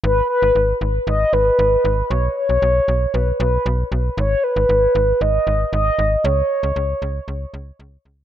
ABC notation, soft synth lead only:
X:1
M:4/4
L:1/8
Q:1/4=116
K:G#m
V:1 name="Soft synth lead"
B B2 z d B3 | c c3 B B2 z | c B3 d2 d2 | c6- c z |]